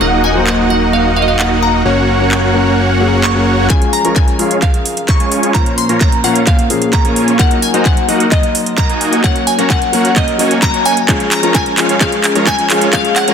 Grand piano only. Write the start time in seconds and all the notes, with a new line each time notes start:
0.00 F#3 A#3 D#4 A#4
0.35 F#3 A#3 D#4 C5
0.69 F#3 A#3 D#4 A#4
1.85 F#3 A#3 C#4 C#5
2.19 F#3 A#3 C#4 A#4
2.54 F#3 A#3 C#4 A#4
3.00 F#3 A#3 C#4 G#4
3.35 F#3 A#3 C#4 A#4
3.70 C#4 G#4
4.04 F3 G#3 C#4 A#4
4.38 F3 G#3 C#4 G#4
5.54 A#2 F3 A#3 C#4 C5
5.89 A#2 F3 A#3 C#4 A#4
6.23 A#2 F3 A#3 C#4 A#4
6.69 A#2 F3 A#3 C#4 G#4
7.04 A#2 F3 A#3 C#4 A#4
7.39 F#3 A#3 D#4 A#4
7.73 F#3 A#3 D#4 C5
8.07 F#3 A#3 D#4 A#4
9.23 F#3 A#3 C#4 C#5
9.58 F#3 A#3 C#4 A#4
9.92 F#3 A#3 C#4 A#4
10.38 F#3 A#3 C#4 D#5
11.08 F3 G#3 C#4 G#4
11.43 F3 G#3 C#4 A#4
11.77 F3 G#3 C#4 G#4
12.00 F3 G#3 C#4 G#4
12.35 F3 G#3 C#4 A#4
12.69 F3 G#3 C#4 G#4
12.93 F3 G#3 C#4 G#4
13.27 F3 G#3 C#4 A#4